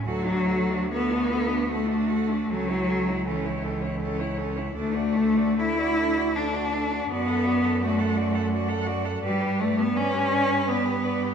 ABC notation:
X:1
M:3/4
L:1/16
Q:1/4=80
K:D
V:1 name="Cello"
A F A F A F A F A F A F | A c A c A c A c A c A c | A d A d A d A d A d A d | d f d f d f d f d f d f |
d B d B d B d B d B d B |]
V:2 name="Cello"
F D F D F D F D F D F D | C E C E C E C E C E C E | D F D F D F D F D F D F | F A F A F A F A F A F A |
B G B G B G B G B G B G |]
V:3 name="Cello"
F,4 B,4 A,4 | F,4 E,6 z2 | A,4 E4 D4 | B,4 A,6 z2 |
G,2 A, B, C4 B,4 |]
V:4 name="Cello" clef=bass
D,,12 | C,,12 | D,,12 | F,,12 |
G,,12 |]